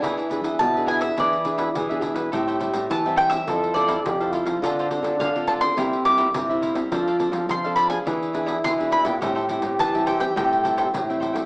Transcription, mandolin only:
\new Staff \with { instrumentName = "Mandolin" } { \time 4/4 \key a \minor \tempo 4 = 105 gis''16 r8. a''8 gis''16 e''16 d''4. r8 | r4 a''8 g''16 e''8. d''4 r8 | r4 f''8 a''16 c'''8. d'''4 r8 | r4 c'''8 b''16 gis''8 r8. c'''8 b''16 g''16~ |
g''16 r8. a''8 g''16 g''16 g''4. r8 | }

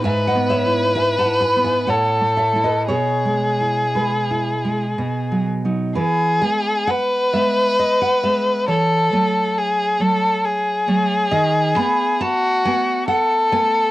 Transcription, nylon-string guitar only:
\new Staff \with { instrumentName = "Nylon-string guitar" } { \time 3/4 \key e \major \tempo 4 = 66 << { <e'' gis''>16 <dis'' fis''>16 <cis'' e''>8 <e'' gis''>16 <fis'' a''>16 <gis'' b''>16 <e'' gis''>16 <cis'' fis''>8 <cis'' e''>16 <b' dis''>16 | <gis' cis''>4 <gis' b'>4. r8 | b'8 gis''8 fis''8 e''8 dis''16 fis''16 e''8 | cis''2~ cis''8 r8 |
dis''8 b''8 a''8 gis''8 fis''8 gis''8 | } \\ { \tuplet 3/2 { gis,8 b8 e'8 b'8 e'8 b8 a,8 a8 <a e'>8 } | \tuplet 3/2 { b,8 gis8 e'8 gis8 e'8 gis8 b,8 fis8 <fis dis'>8 } | e8 <gis b>4 <gis b>4 <gis b>8 | e8 <fis a>4 <fis a>4 <fis a>8 |
dis8 <a b>4 <a b>4 <a b>8 | } >> }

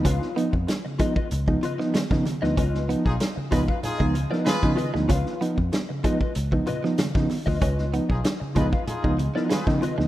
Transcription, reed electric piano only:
\new Staff \with { instrumentName = "Reed electric piano" } { \time 4/4 \key des \mixolydian \tempo 4 = 95 des16 <ces' ees'>16 <f ces' ees'>16 r16 <ces' ees'>16 des16 <f ces' ees'>16 r8 <f ces' ees'>16 des16 <f ces' ees'>16 r16 <f ces' ees'>16 des16 <f ces' ees'>16 | des16 <ces' ees'>16 <f ces' ees'>16 r16 <ces' ees'>16 des16 <f ces' ees'>16 r8 <f ces' ees'>16 des16 <f ces' ees'>16 r16 <f ces' ees'>16 des16 <f ces' ees'>16 | des16 <ces' ees'>16 <f ces' ees'>16 r16 <ces' ees'>16 des16 <f ces' ees'>16 r8 <f ces' ees'>16 des16 <f ces' ees'>16 des16 <f ces' ees'>16 <ces' ees'>16 r16 | des16 <ces' ees'>16 <f ces' ees'>16 r16 <ces' ees'>16 des16 <f ces' ees'>16 r8 <f ces' ees'>16 des16 <f ces' ees'>16 r16 <f ces' ees'>16 des16 <f ces' ees'>16 | }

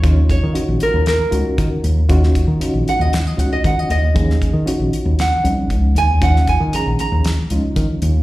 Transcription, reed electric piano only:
\new Staff \with { instrumentName = "Reed electric piano" } { \time 4/4 \key ees \minor \tempo 4 = 116 <f des' ees' f'>8 r8 <des' ees' f' ges'>4 r8 <des' ees' f' ges'>4 r8 | <des' ees' f' ges'>8 r8 <des' ees' f' ges'>4 r8 <des' ees' f' ges'>4 r8 | <f des' ees' aes'>8 r8 <des' ees' f' ges'>4 r8 <f des' ees'>4 r8 | <f des' ees' f'>8 r8 <f des' ees' aes'>4 r8 <f des' ees' f'>4 r8 | }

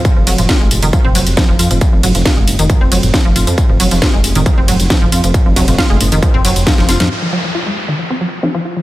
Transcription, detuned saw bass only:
\new Staff \with { instrumentName = "Detuned saw bass" } { \clef bass \time 4/4 \key f \phrygian \tempo 4 = 136 r16 f,,16 f,,16 f,,16 r16 f,,16 f,,16 f,,16 r16 f,,16 f,,16 f,,16 r16 f,,16 f,16 f,,16 | r16 f,,16 f,,16 f,,16 r16 f,,16 ges,,16 f,,16 r16 f,,16 f,,16 f,,16 r16 f,,16 f,,16 f,16 | r16 f,,16 f,,16 f,,16 r16 f,,16 f,,16 f,,16 r16 f,,16 f,,16 f,,16 r16 f,,16 f,16 f,,16 | r16 f,,16 f,,16 f,,16 r16 f,,16 ges,,16 f,,16 r16 f,,16 f,,16 f,,16 r16 f,,16 f,,16 f,16 |
r1 | }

